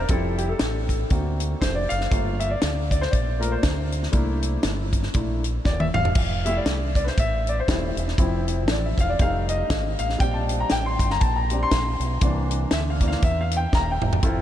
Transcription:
0.08 F1 F3 G3 C4 E4 A4, kick, closed hi-hat
0.38 G4, closed hi-hat
0.49 A4
0.59 A1, snare, closed hi-hat
0.89 kick, closed hi-hat
1.10 D2 A#3 C4 F#4, kick, closed hi-hat
1.40 closed hi-hat
1.61 F1 C5, kick, snare, closed hi-hat
1.75 D5
1.89 F#1 F5, closed hi-hat
2.01 snare
2.11 G1 A3 A#3 F4, kick, closed hi-hat
2.40 E5, closed hi-hat
2.51 D5
2.62 D2, snare, closed hi-hat
2.91 D5, kick, closed hi-hat
3.01 C5, snare
3.11 A#1 D5, kick, closed hi-hat
3.39 A3 A#3 F4 A#4, closed hi-hat
3.52 C5
3.63 D2, kick, snare, closed hi-hat
3.92 closed hi-hat
4.03 snare
4.12 C2 A3 A#3 D4 E4, kick, closed hi-hat
4.43 closed hi-hat
4.63 G1, snare, closed hi-hat
4.93 kick, closed hi-hat
5.03 snare
5.14 A#1 A3 A#3 D4 E4, kick, closed hi-hat
5.44 closed hi-hat
5.65 D#1 D5, kick, snare
5.80 E5, high tom
5.94 E1 F5, mid tom
6.05 floor tom
6.15 F1, kick, crash
6.45 G3 A3 E4 E5, closed hi-hat
6.57 D5
6.66 C2, snare, closed hi-hat
6.95 D5, kick, closed hi-hat
7.04 B4 C5, snare
7.18 A1 E5, kick, closed hi-hat
7.47 D5, closed hi-hat
7.60 C5
7.68 D#1 G3 A3 E4, kick, snare, closed hi-hat
7.96 E1, closed hi-hat
8.08 snare
8.18 F1 F3 C4 E4, kick, closed hi-hat
8.48 closed hi-hat
8.68 A1 D5, snare, closed hi-hat
8.86 E5
8.98 E1 F5, kick, closed hi-hat
9.10 D5
9.19 F1 G3 A3 D#4 F5, kick, closed hi-hat
9.49 D#5, closed hi-hat
9.70 G#1, kick, snare, closed hi-hat
9.99 A1 F5, closed hi-hat
10.10 snare
10.18 A#1 G3 C4 D4 G5, kick, closed hi-hat
10.34 A5
10.49 closed hi-hat
10.60 A#5
10.70 A1 G5, snare, closed hi-hat
10.86 C6
10.99 G1, kick, closed hi-hat
11.10 A#5, snare
11.21 A#1 A5, kick, closed hi-hat
11.36 A#5
11.50 G3 C4 D4, closed hi-hat
11.63 C6
11.71 A#1, kick, snare, closed hi-hat
12.00 B1, closed hi-hat
12.21 C2 E3 A#3 D4, kick, closed hi-hat
12.51 closed hi-hat
12.71 D2 E5, snare, closed hi-hat
12.90 F5
13.01 E3 A#3 D4, kick, closed hi-hat
13.08 F5, snare
13.22 E2 E5, kick, closed hi-hat
13.41 F5
13.51 closed hi-hat
13.57 G5
13.73 D#1 A#5, kick, snare
13.91 G5
14.02 E1, mid tom
14.13 floor tom
14.23 F1 C4 E4 F4 A4, kick, closed hi-hat

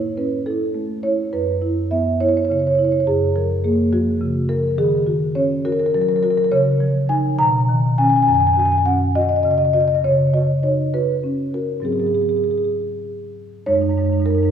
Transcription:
Already playing: A2 E4 C#5
0.17 C#4 B4
0.46 E4 A4
0.74 A3
1.03 E4 C#5
1.33 F#2 B4
1.62 E4
1.91 B3 E5
2.20 E4 C#5
2.29 C#5
2.37 C#5
2.45 C#5
2.50 C#3 C#5
2.59 C#5
2.67 C#5
2.75 E4 C#5
2.85 C#5
2.92 C#5
3.00 C#5
3.07 F#2 G#4
3.36 F3 A#4
3.64 A#3 G#4
3.93 F3 F#4
4.21 C#3
4.49 F3 A#4
4.78 D#3 G#4
5.06 F#4
5.35 C#4 C#5
5.65 F#4 A#4
5.72 A#4
5.79 A#4
5.86 A#4
5.94 F#3 A#4
6.01 A#4
6.09 A#4
6.16 A#4
6.23 F#4 A#4
6.30 A#4
6.37 A#4
6.44 A#4
6.51 C#3 C#5
6.80 F3
7.09 F3 D#4 G#5
7.39 B2 A#5
7.69 D#3
7.98 D#3 C#4 G#5
8.04 G#5
8.10 G#5
8.16 G#5
8.22 G#5
8.27 F#2 G#5
8.34 G#5
8.40 G#5
8.47 G#5
8.53 F#4 G#5
8.59 G#5
8.65 G#5
8.72 G#5
8.78 G#5
8.85 C#4 F#5
9.15 F#4 D#5
9.21 D#5
9.29 D#5
9.36 D#5
9.43 C#3 D#5
9.51 D#5
9.58 D#5
9.65 D#5
9.73 F#4 D#5
9.81 D#5
9.88 D#5
9.95 D#5
10.04 C#3 C#5
10.34 F#4 D#5
10.63 D#4 C#5
10.94 F#4 B4
11.23 C#4
11.54 F#4 A#4
11.80 G#2 F#3 C4
11.85 G#4
11.92 G#4
12.00 G#4
12.07 G#4
12.15 G#4
12.22 G#4
12.29 G#4
12.37 G#4
12.44 G#4
12.51 G#4
12.58 G#4
12.64 G#4
13.66 F#2 G#3 D#4 C#5
13.74 F#2 G#3 D#4
13.82 G#3 D#4
13.89 F#2 G#3 D#4
13.97 F#2 G#3 D#4
14.05 G#3 D#4
14.10 F#2 G#3 D#4
14.20 F#2 G#3 D#4
14.26 D#4 A#4
14.30 F#2 G#3
14.35 G#3 D#4
14.41 F#2 G#3 D#4

